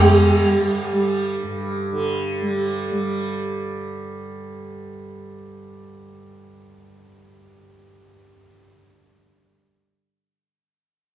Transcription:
Already playing: G2 D3 G3
0.43 G3
0.92 G3
1.43 G2
1.92 D3
2.42 G3
2.91 G3

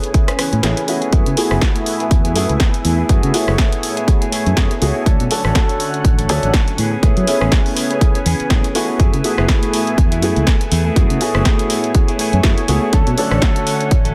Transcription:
Already playing: A3 B3 C#4 E4 G#4 B4 G#5
0.04 closed hi-hat
0.14 A3 B3 C#4 E4 G#4, kick, closed hi-hat
0.27 B3 C#4 G#4, cross-stick, closed hi-hat
0.38 E3 B3 C#4 G#4, cross-stick, open hi-hat
0.53 A2, closed hi-hat
0.63 A1 E3 A3 B3 C#4 E4 G#4, snare, closed hi-hat
0.77 closed hi-hat
0.87 E3 A3 B3 C#4 E4 F#4 G#4, open hi-hat
1.01 B3 C#4 G#4, closed hi-hat
1.12 F#2 A3 B3 E4 G#4 B4, kick, closed hi-hat
1.26 C#3, closed hi-hat
1.37 A3 B3 E4 F#4 G#4, open hi-hat
1.51 F#1 B3 E4 G#4, cross-stick
1.61 G#4, kick, snare, closed hi-hat
1.75 B3 E4 G#4, closed hi-hat
1.86 open hi-hat
2.00 B3 E4 G#4, closed hi-hat
2.11 E2, kick, closed hi-hat
2.24 B3 E4 G#4, closed hi-hat
2.35 F#2 A3 B3 E4 F#4 G#4, open hi-hat
2.49 C#2, closed hi-hat
2.60 A3 B3 E4 G#4, kick, snare, closed hi-hat
2.74 closed hi-hat
2.84 E2 A3 B3 E4 G#4, open hi-hat
2.98 B3 E4 G#4
3.09 F#2 A3 B3 E4 F#4 G#4 C#5, kick, closed hi-hat
3.23 C#3, closed hi-hat
3.33 A3 B3 E4 F#4 G#4, open hi-hat
3.47 F#1 B3 E4 G#4, cross-stick
3.58 A3 B3 E4 G#4, kick, snare, closed hi-hat
3.72 B3 E4 G#4, closed hi-hat
3.83 open hi-hat
3.97 B3 E4 G#4, closed hi-hat
4.07 A3 B3 E4 F#4 G#4, kick, closed hi-hat
4.21 B3 E4 G#4, closed hi-hat
4.32 A3 B3 E4 G#4, open hi-hat
4.46 F#2, closed hi-hat
4.57 A3 B3 E4 F#4 G#4, kick, snare, closed hi-hat
4.71 closed hi-hat
4.81 C#2 A3 B3 E4 F#4 G#4, open hi-hat
4.95 B3 E4 G#4
5.05 D2 D3 F#3 A3 C#4 D4 F#4 A4 F#5, kick, closed hi-hat
5.20 B2, closed hi-hat
5.30 A3 C#4 D4 F#4 A4, open hi-hat
5.44 A1 A3 C#4 A4, cross-stick
5.55 D3 F#3 A3 C#4 F#4 A4, kick, snare, closed hi-hat
5.69 A3 C#4 A4, closed hi-hat
5.80 open hi-hat
5.94 closed hi-hat
6.05 A1, kick, closed hi-hat
6.18 A3 C#4 A4, closed hi-hat
6.29 D2 F#3 A3 C#4 D4 F#4 A4, open hi-hat
6.43 A1, closed hi-hat
6.53 F#3 A3 C#4 A4, kick, snare, closed hi-hat
6.68 closed hi-hat
6.77 A2 E3 B3 C#4 G#4 B4 G#5, open hi-hat
6.92 B3 C#4 G#4
7.02 A2 E3 A3 B3 C#4 E4 G#4, kick, closed hi-hat
7.16 F#3 B3 C#4 G#4, closed hi-hat
7.27 A3 B3 C#4 E4 G#4, open hi-hat
7.41 A1 B3 C#4 G#4, cross-stick
7.51 E3 A3 B3 C#4 E4 G#4, kick, snare, closed hi-hat
7.65 B3 C#4 G#4, open hi-hat
7.77 open hi-hat
7.90 B3 C#4 G#4, closed hi-hat
8.01 A3 B3 C#4 E4 G#4, kick, closed hi-hat
8.14 B3 C#4 G#4, closed hi-hat
8.25 E2 E3 B3 C#4 G#4, open hi-hat
8.40 muted fingered electric bass stroke, closed hi-hat
8.50 A1 E3 A3 B3 C#4 E4 G#4, kick, snare, closed hi-hat
8.64 closed hi-hat
8.74 E3 A3 B3 C#4 E4 F#4 G#4, open hi-hat
8.88 B3 C#4 G#4
8.99 F#2 A3 B3 E4 F#4 G#4 G#5, kick, closed hi-hat
9.13 C#3 B3 E4 G#4, closed hi-hat
9.24 A3 B3 E4 F#4 G#4, open hi-hat
9.37 F#1 B3 E4 G#4, cross-stick
9.48 A3 B3 E4 F#4 G#4, kick, snare, closed hi-hat
9.62 B3 E4 G#4, closed hi-hat
9.73 open hi-hat
9.87 closed hi-hat
9.98 E2, kick, closed hi-hat
10.11 B3 E4 G#4, closed hi-hat
10.22 F#2 A3 B3 E4 F#4 G#4, open hi-hat
10.36 C#2, closed hi-hat
10.46 A3 B3 E4 G#4, kick, snare, closed hi-hat
10.61 closed hi-hat
10.71 E2 A3 B3 E4 G#4, open hi-hat
10.85 B3 E4 G#4
10.96 F#2 A3 B3 E4 F#4 G#4 C#5, kick, closed hi-hat
11.10 C#3, closed hi-hat
11.21 A3 B3 E4 F#4 G#4, open hi-hat
11.34 F#1 B3 E4 G#4, cross-stick
11.45 A3 B3 E4 G#4, kick, snare, closed hi-hat
11.59 B3 E4 G#4, closed hi-hat
11.70 open hi-hat
11.84 closed hi-hat
11.94 A3 B3 E4 F#4 G#4, kick, closed hi-hat
12.08 B3 E4 G#4, closed hi-hat
12.19 A3 B3 E4 G#4, open hi-hat
12.33 F#2, closed hi-hat
12.43 A3 B3 E4 F#4 G#4, kick, snare, closed hi-hat
12.58 closed hi-hat
12.68 C#2 A3 B3 E4 F#4 G#4, open hi-hat
12.82 B3 E4 G#4
12.93 D2 D3 F#3 A3 C#4 D4 F#4 A4 F#5, kick, closed hi-hat
13.07 B2, closed hi-hat
13.18 A3 C#4 D4 F#4 A4, open hi-hat
13.31 A1 A3 C#4 A4, cross-stick
13.42 D3 F#3 A3 C#4 F#4 A4, kick, snare, closed hi-hat
13.56 A3 C#4 A4, closed hi-hat
13.67 open hi-hat
13.81 closed hi-hat
13.91 A1, kick, closed hi-hat
14.05 A3 C#4 A4, closed hi-hat

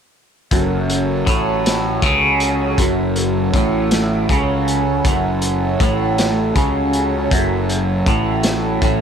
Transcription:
0.51 F#1 F#2 F#3 C#4 A4, kick, closed hi-hat
0.90 closed hi-hat
1.27 A1 A2, kick, closed hi-hat
1.66 snare, closed hi-hat
2.02 C#2 C#3, kick, closed hi-hat
2.40 closed hi-hat
2.78 F#1 F#2, kick, closed hi-hat
3.16 closed hi-hat
3.54 A1 A2, kick, closed hi-hat
3.91 snare, closed hi-hat
4.29 C#2 C#3, kick, closed hi-hat
4.68 closed hi-hat
5.05 F#1 F#2, kick, closed hi-hat
5.42 closed hi-hat
5.80 A1 A2, kick, closed hi-hat
6.18 snare, closed hi-hat
6.55 C#2 C#3, kick, closed hi-hat
6.93 closed hi-hat
7.31 F#1 F#2, kick, closed hi-hat
7.69 closed hi-hat
8.06 A1 A2, kick, closed hi-hat
8.43 snare, closed hi-hat
8.82 A1 A2, kick, closed hi-hat

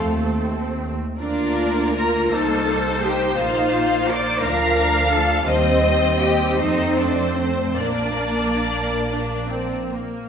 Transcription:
Already playing: A3 C4 A4
0.02 D#2
1.19 D2 A#3 D4 F4 A#4 D5
1.95 A#4 A#5
2.32 C2 D#4 A4 C5 A5
3.05 G4 G5
3.39 A#1 A#3 F4 F5
4.08 D5 D6
4.42 D2 F3 D4 A#4 F5 A#5
5.11 A4 A5
5.47 D#2 G3 C4 C5 D#5
6.21 G4 G5
6.58 F2 A3 D#4 C5 D#5
6.97 D4 D5
7.37 C4 C5
7.77 A#1 A#3 D4 A#4 D5
9.09 D4
9.48 C4
9.92 A#3

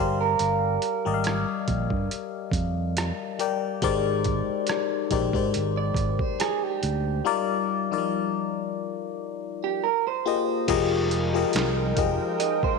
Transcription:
Already playing: G1 G3 G4 A#4 C5 D5
0.00 F5
0.21 A#4
0.39 G1, closed hi-hat
0.82 closed hi-hat
1.05 G#1 G3 G4 A#4 D5 D#5
1.14 F5
1.24 cross-stick, closed hi-hat
1.68 A#1, kick, closed hi-hat
1.90 G2, kick
2.11 closed hi-hat
2.51 F2, kick, closed hi-hat
2.97 cross-stick, closed hi-hat
3.39 G3 G4 A#4 D5 G5, closed hi-hat
3.82 G#1 G#3 D#4 G4 A#4 C5 D5, kick, closed hi-hat
4.24 kick, closed hi-hat
4.49 muted fingered electric bass stroke
4.67 cross-stick, closed hi-hat
5.11 A#1 G#3 D#4 G4 A#4 C5 D5, kick, closed hi-hat
5.33 G#2 G#3 D#4 G4 A#4 C5 D5, kick
5.54 G#1, closed hi-hat
5.77 D5
5.94 G#1, kick, closed hi-hat
6.19 C5, kick
6.40 G#4, cross-stick, closed hi-hat
6.63 G4
6.83 D2, closed hi-hat
7.25 G3 D#4 F4 A#4 D5
7.91 F3 D#4 F4 A#4 D5
7.98 G3
9.64 G4
9.84 A#4
10.07 C5
10.25 A#3 F4 G4 G#4 C5 D#5
10.68 F1 F3 G#3 D#4 F4 G4 G#4 A#4 D#5 G5, kick, closed hi-hat, crash
11.11 closed hi-hat
11.34 F3 F4 G4 G#4 A#4 D#5
11.53 C2, snare, clap, closed hi-hat
11.96 F1 F3 F4 G4 G#4 A#4 D#5, kick, closed hi-hat
12.40 D#5, closed hi-hat
12.63 C5, kick

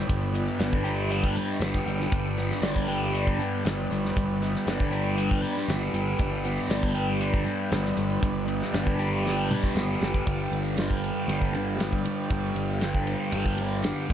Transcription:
Already playing: G3 B3 D4 G4 B4 D5 G5 B5
0.07 G1 G2, kick, closed hi-hat, tambourine
0.23 tambourine
0.33 B3, closed hi-hat
0.48 tambourine
0.59 G1 D4, snare, closed hi-hat, tambourine
0.73 kick, tambourine
0.84 G4, closed hi-hat, tambourine
1.11 D4, closed hi-hat
1.24 kick, tambourine
1.36 G3, closed hi-hat, tambourine
1.50 tambourine
1.60 G1 B3, snare, closed hi-hat, tambourine
1.74 kick, snare, tambourine
1.86 G1 G3, closed hi-hat, tambourine
2.00 snare, tambourine
2.12 G1 G2, kick, closed hi-hat, tambourine
2.37 B3, snare, closed hi-hat
2.51 snare, tambourine
2.62 G1 D4, snare, closed hi-hat, tambourine
2.76 kick
2.88 G4, closed hi-hat, tambourine
3.13 D4, closed hi-hat, tambourine
3.27 kick, tambourine
3.39 G3, closed hi-hat, tambourine
3.65 G1 B3, snare, closed hi-hat, tambourine
3.90 G1 G3, closed hi-hat, tambourine
4.04 snare, tambourine
4.16 G1 G2, kick, closed hi-hat, tambourine
4.41 B3, snare, closed hi-hat
4.55 snare, tambourine
4.66 G1 D4, snare, closed hi-hat, tambourine
4.80 kick
4.91 G4, closed hi-hat, tambourine
5.16 D4, closed hi-hat, tambourine
5.31 kick, tambourine
5.42 G3, closed hi-hat, tambourine
5.57 snare
5.68 G1 B3, snare, closed hi-hat, tambourine
5.93 G1 G3, closed hi-hat, tambourine
6.07 tambourine
6.18 G1 G2, kick, closed hi-hat, tambourine
6.45 B3, closed hi-hat
6.58 tambourine
6.69 G1 D4, snare, closed hi-hat, tambourine
6.83 kick, tambourine
6.94 G4, closed hi-hat, tambourine
7.20 D4, closed hi-hat, tambourine
7.34 kick
7.45 G3, closed hi-hat, tambourine
7.71 G1 B3, snare, closed hi-hat, tambourine
7.85 snare
7.96 G1 G3, closed hi-hat, tambourine
8.10 tambourine
8.21 G1 G2, kick, closed hi-hat
8.35 tambourine
8.47 B3, closed hi-hat, tambourine
8.61 snare, tambourine
8.72 G1 D4, snare, closed hi-hat, tambourine
8.86 kick, tambourine
8.99 G4, closed hi-hat, tambourine
9.12 tambourine
9.24 D4, snare, tambourine
9.38 tambourine
9.50 G3, mid tom, tambourine
9.63 kick
9.75 G1 B3, snare, tambourine
9.89 tambourine
10.00 G1 G3, snare, tambourine
10.14 kick
10.25 G1 G2 D3 G4 B4 D5 F5 G5, kick, ride
10.29 G3
10.52 G1, ride
10.76 G2 D3 G3, snare, ride, tambourine
10.91 kick
11.04 ride
11.27 G1 G2 D3 G3, ride
11.42 kick
11.52 D3 G3, ride
11.77 G2 D3 G3, ride, tambourine
11.81 snare
11.93 kick
12.03 D3 G3, ride
12.29 G1 G2 D3 G3, kick, ride
12.55 G1, ride
12.80 G2 D3 G3, snare, ride, tambourine
12.94 kick
13.07 ride
13.31 G1 G2 D3 G3, ride
13.46 kick
13.57 D3 G3, ride
13.83 G2 D3 G3, snare, ride, tambourine
14.08 G#1 D#3 G#3 G#4 C5 D#5, kick, ride

